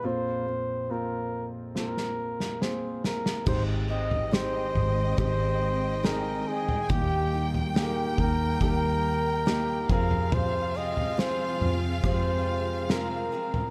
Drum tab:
CC |----------------|x---------------|----------------|----------------|
SD |--------oo-oo-oo|----o-------o---|----o-------o---|----o-------o---|
FT |----------------|o--o--o-o------o|o--o--o-o------o|o--o--o-o------o|
BD |----------------|o-------o-------|o-----o-o-----o-|--------o-------|